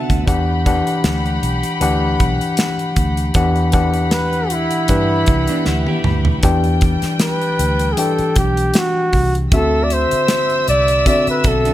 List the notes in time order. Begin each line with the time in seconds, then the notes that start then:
Already playing: C3 D3 B3 D4 F#4 E5 F#5 A5
0.10 D2, kick, closed hi-hat
0.26 E2 E3 D4 G4 F#5 B5, kick, closed hi-hat
0.66 E3 D4 G4 F#5, kick, closed hi-hat
0.87 closed hi-hat
1.04 D2, snare, closed hi-hat
1.26 closed hi-hat
1.43 B1, closed hi-hat
1.63 closed hi-hat
1.81 D2 E3 D4 G4 F#5, closed hi-hat
2.20 B1, kick, closed hi-hat
2.41 closed hi-hat
2.57 snare, closed hi-hat
2.79 closed hi-hat
2.96 D2, kick, closed hi-hat
3.17 closed hi-hat
3.34 E2 E3 D4 G4 F#5 B5, kick, closed hi-hat
3.56 closed hi-hat
3.72 E3 D4 G4 F#5, kick, closed hi-hat
3.94 closed hi-hat
4.11 B4, snare, closed hi-hat
4.33 closed hi-hat
4.50 E4, closed hi-hat
4.71 closed hi-hat
4.88 G2 E3 D4 G4 B4, kick, closed hi-hat
5.26 C2, kick, closed hi-hat
5.47 B3 D4, closed hi-hat
5.65 D2 E4, snare
5.87 E4 G4, high tom
6.04 D2, mid tom
6.25 floor tom
6.43 E2 E3 G3 D4 G4 G5, kick, closed hi-hat
6.64 closed hi-hat
6.81 kick, closed hi-hat
7.02 muted fingered electric bass stroke, snare, closed hi-hat
7.19 B4, snare, closed hi-hat
7.42 closed hi-hat
7.59 D2, closed hi-hat
7.79 closed hi-hat
7.92 G#4
7.97 E3 D4 G4 A4 G5, closed hi-hat
8.19 muted fingered electric bass stroke, closed hi-hat
8.36 B1 G4, kick, closed hi-hat
8.57 closed hi-hat
8.74 snare, closed hi-hat
8.78 F#4
9.13 C2, kick, open hi-hat
9.35 closed hi-hat
9.52 D2 D3 C4 F#4 A4 E5 E6, kick, closed hi-hat
9.84 D5
9.90 C5, closed hi-hat
10.11 muted fingered electric bass stroke, closed hi-hat
10.28 snare, closed hi-hat
10.50 closed hi-hat
10.68 C2 D5, closed hi-hat
10.88 closed hi-hat
11.06 D3 C4 F#4 D5 E5, kick, closed hi-hat
11.27 B4, muted fingered electric bass stroke, closed hi-hat
11.44 B1 F#4 A4, kick, closed hi-hat
11.65 D4 F#4, closed hi-hat